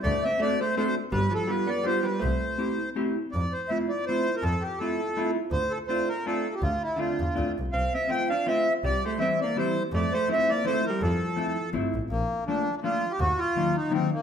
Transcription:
X:1
M:3/4
L:1/16
Q:"Swing" 1/4=164
K:C
V:1 name="Accordion"
d2 e2 d2 c2 c2 z2 | B2 A2 B2 d2 c2 B2 | c8 z4 | [K:F] d2 c2 e2 d2 c3 B |
A2 G2 A6 z2 | c2 A2 c2 B2 A3 G | F2 E2 F6 z2 | f2 e2 g2 f2 e3 z |
d2 c2 e2 d2 c3 z | d2 c2 e2 d2 c2 B2 | A8 z4 | [K:Bb] B,4 D3 D F3 G |
_G2 F4 E2 C2 B,2 |]
V:2 name="Hollow-body jazz guitar"
z4 [CD^FA]2 z2 [CDFA]2 z2 | z4 [B,DFG]2 z2 [B,DFG]2 z2 | z4 [A,CEG]2 z2 [A,CEG]2 z2 | [K:F] z4 [A,CEF]2 z2 [A,CEF]2 z2 |
z4 [A,CEF]2 z2 [A,CEF]2 z2 | z4 [A,CDF]2 z2 [A,CDF]2 z2 | z4 [A,CDF]2 z2 [A,CDF]2 z2 | z4 [F,A,CF]2 z2 [F,A,CF]2 z2 |
z4 [E,G,CE]2 z2 [E,G,CE]2 z2 | z4 [F,A,CE]2 z2 [F,A,CE]2 z2 | z4 [F,A,CE]2 z2 [F,A,CE]2 z2 | [K:Bb] z4 [F,A,B,D]2 z2 [F,A,B,D]2 z2 |
z4 [E,_G,B,E]2 z2 [E,G,B,E]2 z2 |]
V:3 name="Hollow-body jazz guitar"
A,2 C2 A,2 A,2 A,2 z2 | G,2 F,2 G,2 B,2 G,2 G,2 | A,8 z4 | [K:F] z12 |
z12 | z12 | z4 D,6 z2 | C2 C2 C2 D2 C3 z |
G,2 A,2 C2 B,2 G,3 z | A,2 A,2 C2 B,2 A,2 G,2 | F,8 z4 | [K:Bb] z12 |
z12 |]
V:4 name="Double bass" clef=bass
D,,12 | G,,,12 | C,,12 | [K:F] F,,12 |
F,,12 | D,,12 | D,,6 E,,2 D,,2 C,,2 | C,,12 |
C,,12 | F,,12 | F,,8 G,,,2 A,,,2 | [K:Bb] B,,,12 |
E,,12 |]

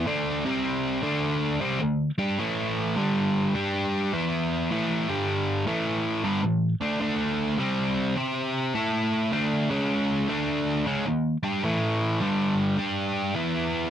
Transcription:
X:1
M:4/4
L:1/8
Q:"Swing" 1/4=104
K:D
V:1 name="Overdriven electric guitar" clef=bass
[D,A,D] [=C,G,=C]2 [D,A,D]2 [C,G,C] [D,A,] [G,DG] | [A,,E,A,]2 [G,,D,G,]2 [G,DG]2 [E,B,E]2 | [A,,E,A,] [G,,D,G,]2 [A,,E,A,]2 [G,,D,G,] [A,,E,] [D,A,D] | [D,A,D]2 [=C,G,=C]2 [CG=c]2 [A,EA]2 |
[D,A,D] [C,^G,C]2 [D,A,D]2 [C,G,C] [^D,^A,] [=G,=DG] | [A,,E,A,]2 [G,,D,G,]2 [G,DG]2 [E,B,E]2 |]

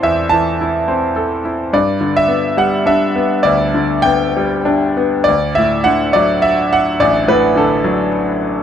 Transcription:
X:1
M:3/4
L:1/16
Q:1/4=105
K:Dmix
V:1 name="Grand piano"
e2 a6 z4 | d3 e3 f2 e4 | d4 g4 z4 | d2 e2 f2 d2 e2 f2 |
d2 B2 A4 z4 |]
V:2 name="Grand piano" clef=bass
[E,,CEA]2 E,2 E2 C2 A2 E2 | G,,2 D,2 B,2 G,2 D2 B,2 | D,,2 D,2 B,2 G,2 D2 B,2 | D,,2 A,,2 D,2 F,6 |
A,,,2 A,,2 D,2 F,6 |]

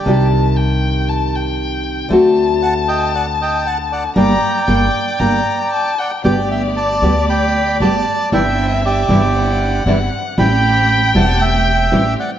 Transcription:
X:1
M:4/4
L:1/8
Q:1/4=116
K:Gm
V:1 name="Violin"
a2 g2 a g3 | a8 | b2 g2 b2 a g | [K:G] d8 |
e4 f4 | g8 |]
V:2 name="Bandoneon"
[Gd] z6 z | z2 [^fa] [eg] [df] [eg] [fa] [df] | [dg]6- [dg] [d^f] | [K:G] [dg] [eg] [da]2 [gb]2 [da]2 |
[eg]2 [Gd]4 z2 | [gb]3 [fa] [eg]3 [df] |]
V:3 name="String section"
z8 | z8 | z8 | [K:G] [A,B,G]3 [A,B,G]3 [A,B,G] z |
[CDE]3 [CDE]3 [CDE] z | [A,CG]3 [A,CG]3 [A,CG] z |]
V:4 name="Nylon-string guitar"
[C,E,G,DG]8 | [D,A,C^F]8 | [G,B,D] z [G,B,D] z [G,B,D] z3 | [K:G] [D,G,B,G] z2 [D,G,B,G] z2 [D,G,B,G] z |
[C,E,G,DE] z2 [C,E,G,DE] z2 [C,E,G,DE] z | [E,G,CE] z2 [E,G,CE] z2 [E,G,CE] z |]
V:5 name="Upright bass" clef=bass
C,,8 | D,,8 | G,,, z G,,, z G,,, z3 | [K:G] G,,,3 D,,3 G,,, z |
G,,,3 G,,,3 G,,, z | A,,,3 E,,,3 A,,, z |]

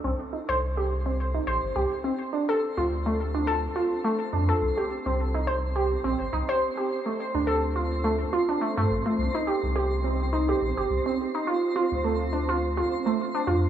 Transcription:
X:1
M:4/4
L:1/16
Q:"Swing 16ths" 1/4=105
K:Dphr
V:1 name="Synth texture"
[Cc]16- | [Cc]16- | [Cc]16- | [Cc]16- |
[Cc]16- | [Cc]16 |]
V:2 name="Synth pluck"
C z E c z G z C z E c z G z C z | D A z F z A, z D A z F z A, z D A | z G z C z E c z G z C z E c z G | z A, z D A z F z A, z F D A, A, z A, |
z E G z G z C z E G z G z C z E | F z F z A, z D F z F z A, z D F z |]
V:3 name="Sub bass" clef=bass
C,, z2 C,,6 z B,,, G,,, C,, z3 | z3 D,,6 z4 z F,, z | C,, z2 C,,6 z B,,, G,,, C,, z3 | z3 D,,6 z4 G,, A,,, z |
C,, z2 C,,6 z B,,, G,,, C,, z3 | z3 D,,6 z4 z F,, z |]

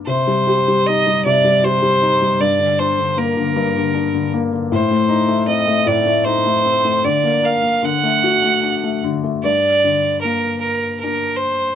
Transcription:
X:1
M:3/4
L:1/16
Q:1/4=77
K:Gm
V:1 name="Fiddle"
c4 e2 d2 c4 | d2 c2 B6 z2 | c4 e2 d2 c4 | d2 f2 ^f6 z2 |
d4 B2 B2 B2 c2 |]
V:2 name="Felt piano"
C, G, G G, E G, C, G, G G, E G, | G,, D, D D, B, D, G,, D, D D, B, D, | A,, A, E A, C A, A,, A, E A, C A, | D, B, B B, D, A, ^F A, D A, D, A, |
G,,2 D,2 B,4 D4 |]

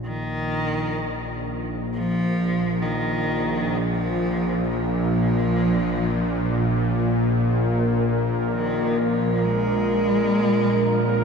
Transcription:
X:1
M:4/4
L:1/8
Q:1/4=64
K:none
V:1 name="Synth texture"
z8 | z8 | _B8 |]
V:2 name="Cello" clef=bass
_E,3 z F,2 E,2 | F,2 F,4- F, z | z2 _E, F, _A,4 |]
V:3 name="Synth drone" clef=bass
[_B,,,_B,,]8- | [_B,,,_B,,]8- | [_B,,,_B,,]8 |]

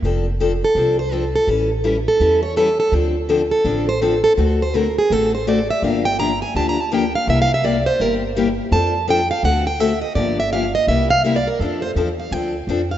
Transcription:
X:1
M:4/4
L:1/16
Q:"Swing" 1/4=166
K:F
V:1 name="Steel-string acoustic guitar"
z6 A4 c2 A2 A2 | z6 A4 ^c2 A2 A2 | z6 A4 c2 A2 A2 | z2 c2 B2 _A2 =A2 c2 d2 e2 |
f2 g2 b2 _a2 (3=a2 b2 a2 g2 f2 | (3e2 f2 e2 d2 c2 B2 z6 | a4 g2 f2 ^f2 g2 e2 _e2 | d2 e2 f2 _e2 =e2 f2 (3e2 d2 B2 |
A2 c2 z2 f2 g6 f2 |]
V:2 name="Steel-string acoustic guitar"
[F,CDA]2 z2 [F,CDA] z3 [F,CDA]2 z2 [F,CDA] z3 | [E,G,^CEA]2 z2 [E,G,CEA] z3 [E,G,CEA]2 z2 [E,G,CEA] z3 | [D,F,CDA]2 z2 [D,F,CDA] z3 [D,F,CDA]2 z2 [D,F,CDA] z3 | [D,A,C^FA]2 z2 [D,A,CFA] z3 [D,A,CFA]2 z2 [D,A,CFA] z3 |
[D,F,B,DG]2 z2 [D,F,B,DG] z3 [D,F,B,DG]2 z2 [D,F,B,DG] z3 | [C,G,B,EG]2 z2 [C,G,B,EG] z3 [C,G,B,EG]2 z2 [C,G,B,EG] z3 | [F,CDA]2 z2 [F,CDA] z3 [D,A,C^FA]2 z2 [D,A,CFA] z3 | [D,F,B,DG]2 z2 [D,F,B,DG] z3 [C,G,B,EG]2 z2 [C,G,B,EG] z3 |
[F,CDA]2 z2 [F,CDA] z3 [F,CDA]2 z2 [F,CDA] z3 |]
V:3 name="Upright bass" clef=bass
F,,,8 C,,8 | A,,,8 E,,8 | D,,8 A,,,8 | D,,8 A,,,8 |
G,,,8 D,,8 | C,,8 G,,,8 | F,,8 D,,8 | G,,,8 C,,8 |
F,,4 E,,4 D,,4 F,,4 |]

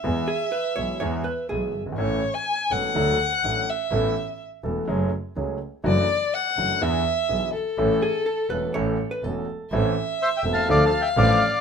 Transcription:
X:1
M:4/4
L:1/16
Q:1/4=124
K:A
V:1 name="Bandoneon"
z16 | z16 | z16 | z16 |
z16 | [K:Am] z4 (3[ce]2 [eg]2 [fa]2 (3[df]2 [fa]2 [eg]2 [df]4 |]
V:2 name="Violin"
e12- e2 z2 | c3 g3 f8 e2- | e4 z12 | d4 f4 e6 A2- |
A12 z4 | [K:Am] e8 f8 |]
V:3 name="Hollow-body jazz guitar"
z2 G2 B2 c2 c2 B2 G3 z | z16 | z16 | z16 |
z2 G2 A2 B2 c3 B A4 | [K:Am] z16 |]
V:4 name="Grand piano" clef=bass
[E,,E,G,B,G]2 z4 [B,,,B,,E,G,B,G]2 [E,,E,G,B,G]2 z2 [B,,,B,,E,G,B,G]2 z/2 F,,,/2 =G,,,/2 ^G,,,/2 | [A,,,A,,E,A,CA]2 z4 [E,,,E,,E,A,CA]2 [D,,D,F,A,DA]2 z2 [A,,,A,,F,A,DA]2 z2 | [A,,,A,,E,A,B,A]2 z4 [E,,,E,,E,A,B,A]2 [F,,F,A,CG]2 z2 [C,,C,F,A,CG]2 z2 | [F,,E,F,A,DF]2 z4 [F,,E,F,A,DF]2 [E,,E,B,DG]2 z2 [B,,,B,,E,B,DG]2 z2 |
[A,,,A,,E,A,CA]2 z4 [E,,,E,,E,A,CA]2 [A,,,A,,E,A,CA]2 z2 [E,,,E,,E,A,CA]2 z2 | [K:Am] [A,,,A,,E,A,CA]2 z4 [E,,,E,,E,A,CA]2 [D,,D,F,A,DA]2 z2 [A,,,A,,F,A,DA]2 z2 |]
V:5 name="Double bass" clef=bass
E,,2 z4 B,,,2 E,,2 z2 B,,,2 =G,,,2 | A,,,2 z4 E,,,2 D,,2 z2 A,,,2 z2 | A,,,2 z4 E,,,2 F,,,2 z2 C,,2 z2 | F,,,2 z4 F,,,2 E,,2 z2 B,,,2 z2 |
A,,,2 z4 E,,,2 A,,,2 z2 E,,,2 z2 | [K:Am] A,,,2 z4 E,,,2 D,,2 z2 A,,,2 z2 |]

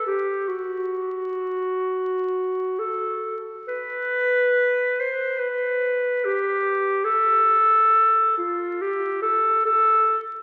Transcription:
X:1
M:4/4
L:1/8
Q:1/4=69
K:Am
V:1 name="Clarinet"
G ^F4- F A z | B3 c B2 G2 | A3 F G A A z |]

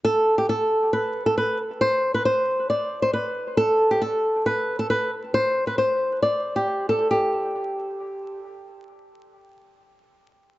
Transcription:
X:1
M:4/4
L:1/16
Q:1/4=136
K:Am
V:1 name="Nylon-string guitar"
A3 G A4 B3 A B2 z2 | c3 B c4 d3 c B4 | A3 G A4 B3 A B2 z2 | c3 B c4 d3 G3 A2 |
G12 z4 | z16 |]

